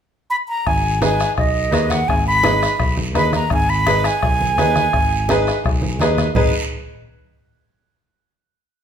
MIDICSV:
0, 0, Header, 1, 6, 480
1, 0, Start_track
1, 0, Key_signature, 5, "minor"
1, 0, Tempo, 356083
1, 894, Time_signature, 4, 2, 24, 8
1, 11912, End_track
2, 0, Start_track
2, 0, Title_t, "Flute"
2, 0, Program_c, 0, 73
2, 407, Note_on_c, 0, 83, 96
2, 488, Note_off_c, 0, 83, 0
2, 658, Note_on_c, 0, 82, 102
2, 905, Note_on_c, 0, 80, 93
2, 925, Note_off_c, 0, 82, 0
2, 1381, Note_off_c, 0, 80, 0
2, 1403, Note_on_c, 0, 80, 89
2, 1838, Note_off_c, 0, 80, 0
2, 1857, Note_on_c, 0, 75, 80
2, 2565, Note_on_c, 0, 78, 86
2, 2585, Note_off_c, 0, 75, 0
2, 2809, Note_on_c, 0, 80, 94
2, 2829, Note_off_c, 0, 78, 0
2, 3053, Note_off_c, 0, 80, 0
2, 3067, Note_on_c, 0, 83, 111
2, 3968, Note_off_c, 0, 83, 0
2, 4273, Note_on_c, 0, 83, 95
2, 4488, Note_off_c, 0, 83, 0
2, 4517, Note_on_c, 0, 82, 83
2, 4731, Note_off_c, 0, 82, 0
2, 4765, Note_on_c, 0, 80, 92
2, 4982, Note_on_c, 0, 83, 104
2, 5002, Note_off_c, 0, 80, 0
2, 5467, Note_on_c, 0, 80, 105
2, 5487, Note_off_c, 0, 83, 0
2, 8096, Note_off_c, 0, 80, 0
2, 11912, End_track
3, 0, Start_track
3, 0, Title_t, "Upright piano"
3, 0, Program_c, 1, 0
3, 1367, Note_on_c, 1, 63, 68
3, 1367, Note_on_c, 1, 68, 60
3, 1379, Note_on_c, 1, 71, 71
3, 1708, Note_off_c, 1, 63, 0
3, 1708, Note_off_c, 1, 68, 0
3, 1714, Note_off_c, 1, 71, 0
3, 2307, Note_on_c, 1, 63, 64
3, 2315, Note_on_c, 1, 68, 60
3, 2319, Note_on_c, 1, 71, 71
3, 2658, Note_off_c, 1, 63, 0
3, 2662, Note_off_c, 1, 68, 0
3, 2664, Note_off_c, 1, 71, 0
3, 3283, Note_on_c, 1, 63, 74
3, 3285, Note_on_c, 1, 68, 66
3, 3299, Note_on_c, 1, 71, 69
3, 3626, Note_off_c, 1, 63, 0
3, 3627, Note_off_c, 1, 68, 0
3, 3634, Note_off_c, 1, 71, 0
3, 4236, Note_on_c, 1, 63, 66
3, 4249, Note_on_c, 1, 68, 61
3, 4249, Note_on_c, 1, 71, 70
3, 4582, Note_off_c, 1, 63, 0
3, 4589, Note_off_c, 1, 68, 0
3, 4589, Note_off_c, 1, 71, 0
3, 5217, Note_on_c, 1, 63, 65
3, 5220, Note_on_c, 1, 68, 61
3, 5226, Note_on_c, 1, 71, 79
3, 5552, Note_off_c, 1, 63, 0
3, 5553, Note_off_c, 1, 68, 0
3, 5556, Note_off_c, 1, 71, 0
3, 6174, Note_on_c, 1, 63, 78
3, 6175, Note_on_c, 1, 68, 68
3, 6184, Note_on_c, 1, 71, 84
3, 6509, Note_off_c, 1, 63, 0
3, 6510, Note_off_c, 1, 68, 0
3, 6515, Note_off_c, 1, 71, 0
3, 7144, Note_on_c, 1, 63, 79
3, 7146, Note_on_c, 1, 68, 78
3, 7156, Note_on_c, 1, 71, 91
3, 7474, Note_off_c, 1, 63, 0
3, 7475, Note_off_c, 1, 68, 0
3, 7479, Note_off_c, 1, 71, 0
3, 8096, Note_on_c, 1, 63, 78
3, 8097, Note_on_c, 1, 68, 76
3, 8109, Note_on_c, 1, 71, 82
3, 8429, Note_off_c, 1, 63, 0
3, 8429, Note_off_c, 1, 68, 0
3, 8435, Note_off_c, 1, 71, 0
3, 8568, Note_on_c, 1, 63, 80
3, 8569, Note_on_c, 1, 68, 75
3, 8573, Note_on_c, 1, 71, 84
3, 8792, Note_off_c, 1, 63, 0
3, 8792, Note_off_c, 1, 68, 0
3, 8794, Note_off_c, 1, 71, 0
3, 11912, End_track
4, 0, Start_track
4, 0, Title_t, "Fingered electric bass"
4, 0, Program_c, 2, 33
4, 898, Note_on_c, 2, 32, 94
4, 1666, Note_off_c, 2, 32, 0
4, 1858, Note_on_c, 2, 35, 88
4, 2334, Note_off_c, 2, 35, 0
4, 2334, Note_on_c, 2, 39, 91
4, 2719, Note_off_c, 2, 39, 0
4, 2815, Note_on_c, 2, 32, 104
4, 3584, Note_off_c, 2, 32, 0
4, 3771, Note_on_c, 2, 35, 90
4, 4252, Note_off_c, 2, 35, 0
4, 4252, Note_on_c, 2, 39, 84
4, 4638, Note_off_c, 2, 39, 0
4, 4728, Note_on_c, 2, 32, 98
4, 5498, Note_off_c, 2, 32, 0
4, 5698, Note_on_c, 2, 35, 89
4, 6169, Note_off_c, 2, 35, 0
4, 6169, Note_on_c, 2, 39, 87
4, 6554, Note_off_c, 2, 39, 0
4, 6655, Note_on_c, 2, 32, 93
4, 7421, Note_off_c, 2, 32, 0
4, 7620, Note_on_c, 2, 35, 95
4, 8091, Note_off_c, 2, 35, 0
4, 8091, Note_on_c, 2, 39, 85
4, 8474, Note_off_c, 2, 39, 0
4, 8573, Note_on_c, 2, 32, 80
4, 8795, Note_off_c, 2, 32, 0
4, 11912, End_track
5, 0, Start_track
5, 0, Title_t, "Two-headed folk drums"
5, 897, Note_on_c, 9, 37, 72
5, 898, Note_on_c, 9, 36, 71
5, 1032, Note_off_c, 9, 36, 0
5, 1032, Note_off_c, 9, 37, 0
5, 1378, Note_on_c, 9, 37, 75
5, 1512, Note_off_c, 9, 37, 0
5, 1626, Note_on_c, 9, 37, 70
5, 1761, Note_off_c, 9, 37, 0
5, 1856, Note_on_c, 9, 37, 78
5, 1857, Note_on_c, 9, 36, 75
5, 1991, Note_off_c, 9, 37, 0
5, 1992, Note_off_c, 9, 36, 0
5, 2337, Note_on_c, 9, 37, 77
5, 2472, Note_off_c, 9, 37, 0
5, 2581, Note_on_c, 9, 37, 77
5, 2716, Note_off_c, 9, 37, 0
5, 2816, Note_on_c, 9, 36, 69
5, 2829, Note_on_c, 9, 37, 78
5, 2951, Note_off_c, 9, 36, 0
5, 2963, Note_off_c, 9, 37, 0
5, 3296, Note_on_c, 9, 37, 82
5, 3431, Note_off_c, 9, 37, 0
5, 3543, Note_on_c, 9, 37, 79
5, 3677, Note_off_c, 9, 37, 0
5, 3768, Note_on_c, 9, 37, 73
5, 3770, Note_on_c, 9, 36, 72
5, 3903, Note_off_c, 9, 37, 0
5, 3905, Note_off_c, 9, 36, 0
5, 4250, Note_on_c, 9, 37, 82
5, 4385, Note_off_c, 9, 37, 0
5, 4489, Note_on_c, 9, 37, 69
5, 4624, Note_off_c, 9, 37, 0
5, 4722, Note_on_c, 9, 37, 77
5, 4730, Note_on_c, 9, 36, 78
5, 4857, Note_off_c, 9, 37, 0
5, 4864, Note_off_c, 9, 36, 0
5, 5211, Note_on_c, 9, 37, 84
5, 5346, Note_off_c, 9, 37, 0
5, 5450, Note_on_c, 9, 37, 76
5, 5585, Note_off_c, 9, 37, 0
5, 5697, Note_on_c, 9, 37, 81
5, 5698, Note_on_c, 9, 36, 75
5, 5831, Note_off_c, 9, 37, 0
5, 5833, Note_off_c, 9, 36, 0
5, 6177, Note_on_c, 9, 37, 76
5, 6311, Note_off_c, 9, 37, 0
5, 6411, Note_on_c, 9, 37, 69
5, 6546, Note_off_c, 9, 37, 0
5, 6650, Note_on_c, 9, 37, 78
5, 6658, Note_on_c, 9, 36, 74
5, 6785, Note_off_c, 9, 37, 0
5, 6793, Note_off_c, 9, 36, 0
5, 7145, Note_on_c, 9, 37, 78
5, 7280, Note_off_c, 9, 37, 0
5, 7387, Note_on_c, 9, 37, 73
5, 7521, Note_off_c, 9, 37, 0
5, 7621, Note_on_c, 9, 36, 78
5, 7626, Note_on_c, 9, 37, 74
5, 7756, Note_off_c, 9, 36, 0
5, 7760, Note_off_c, 9, 37, 0
5, 8110, Note_on_c, 9, 37, 81
5, 8244, Note_off_c, 9, 37, 0
5, 8336, Note_on_c, 9, 37, 71
5, 8470, Note_off_c, 9, 37, 0
5, 8577, Note_on_c, 9, 36, 85
5, 8712, Note_off_c, 9, 36, 0
5, 11912, End_track
6, 0, Start_track
6, 0, Title_t, "Drums"
6, 898, Note_on_c, 9, 74, 69
6, 1033, Note_off_c, 9, 74, 0
6, 1128, Note_on_c, 9, 63, 29
6, 1263, Note_off_c, 9, 63, 0
6, 1371, Note_on_c, 9, 63, 92
6, 1378, Note_on_c, 9, 73, 66
6, 1506, Note_off_c, 9, 63, 0
6, 1513, Note_off_c, 9, 73, 0
6, 1614, Note_on_c, 9, 73, 59
6, 1749, Note_off_c, 9, 73, 0
6, 1852, Note_on_c, 9, 74, 62
6, 1860, Note_on_c, 9, 63, 31
6, 1987, Note_off_c, 9, 74, 0
6, 1995, Note_off_c, 9, 63, 0
6, 2323, Note_on_c, 9, 63, 74
6, 2326, Note_on_c, 9, 73, 65
6, 2458, Note_off_c, 9, 63, 0
6, 2461, Note_off_c, 9, 73, 0
6, 2563, Note_on_c, 9, 63, 72
6, 2564, Note_on_c, 9, 73, 67
6, 2698, Note_off_c, 9, 63, 0
6, 2699, Note_off_c, 9, 73, 0
6, 2805, Note_on_c, 9, 74, 66
6, 2940, Note_off_c, 9, 74, 0
6, 3049, Note_on_c, 9, 63, 29
6, 3184, Note_off_c, 9, 63, 0
6, 3281, Note_on_c, 9, 63, 92
6, 3293, Note_on_c, 9, 73, 63
6, 3416, Note_off_c, 9, 63, 0
6, 3427, Note_off_c, 9, 73, 0
6, 3540, Note_on_c, 9, 73, 66
6, 3675, Note_off_c, 9, 73, 0
6, 3765, Note_on_c, 9, 63, 32
6, 3771, Note_on_c, 9, 74, 67
6, 3900, Note_off_c, 9, 63, 0
6, 3906, Note_off_c, 9, 74, 0
6, 4007, Note_on_c, 9, 63, 74
6, 4142, Note_off_c, 9, 63, 0
6, 4250, Note_on_c, 9, 73, 62
6, 4252, Note_on_c, 9, 63, 81
6, 4385, Note_off_c, 9, 73, 0
6, 4387, Note_off_c, 9, 63, 0
6, 4483, Note_on_c, 9, 63, 65
6, 4493, Note_on_c, 9, 73, 66
6, 4618, Note_off_c, 9, 63, 0
6, 4627, Note_off_c, 9, 73, 0
6, 4735, Note_on_c, 9, 74, 64
6, 4869, Note_off_c, 9, 74, 0
6, 4971, Note_on_c, 9, 63, 30
6, 5106, Note_off_c, 9, 63, 0
6, 5212, Note_on_c, 9, 63, 100
6, 5215, Note_on_c, 9, 73, 63
6, 5346, Note_off_c, 9, 63, 0
6, 5350, Note_off_c, 9, 73, 0
6, 5455, Note_on_c, 9, 73, 68
6, 5590, Note_off_c, 9, 73, 0
6, 5700, Note_on_c, 9, 63, 32
6, 5702, Note_on_c, 9, 74, 67
6, 5835, Note_off_c, 9, 63, 0
6, 5836, Note_off_c, 9, 74, 0
6, 5940, Note_on_c, 9, 63, 71
6, 6075, Note_off_c, 9, 63, 0
6, 6179, Note_on_c, 9, 63, 85
6, 6181, Note_on_c, 9, 73, 58
6, 6313, Note_off_c, 9, 63, 0
6, 6316, Note_off_c, 9, 73, 0
6, 6412, Note_on_c, 9, 73, 69
6, 6416, Note_on_c, 9, 63, 70
6, 6547, Note_off_c, 9, 73, 0
6, 6551, Note_off_c, 9, 63, 0
6, 6658, Note_on_c, 9, 74, 66
6, 6793, Note_off_c, 9, 74, 0
6, 6898, Note_on_c, 9, 63, 29
6, 7033, Note_off_c, 9, 63, 0
6, 7128, Note_on_c, 9, 63, 92
6, 7136, Note_on_c, 9, 73, 65
6, 7263, Note_off_c, 9, 63, 0
6, 7271, Note_off_c, 9, 73, 0
6, 7375, Note_on_c, 9, 73, 62
6, 7510, Note_off_c, 9, 73, 0
6, 7606, Note_on_c, 9, 63, 31
6, 7612, Note_on_c, 9, 74, 66
6, 7741, Note_off_c, 9, 63, 0
6, 7747, Note_off_c, 9, 74, 0
6, 7842, Note_on_c, 9, 63, 73
6, 7977, Note_off_c, 9, 63, 0
6, 8080, Note_on_c, 9, 63, 81
6, 8097, Note_on_c, 9, 73, 66
6, 8215, Note_off_c, 9, 63, 0
6, 8231, Note_off_c, 9, 73, 0
6, 8328, Note_on_c, 9, 63, 69
6, 8335, Note_on_c, 9, 73, 67
6, 8463, Note_off_c, 9, 63, 0
6, 8470, Note_off_c, 9, 73, 0
6, 8559, Note_on_c, 9, 64, 96
6, 8578, Note_on_c, 9, 74, 94
6, 8694, Note_off_c, 9, 64, 0
6, 8713, Note_off_c, 9, 74, 0
6, 11912, End_track
0, 0, End_of_file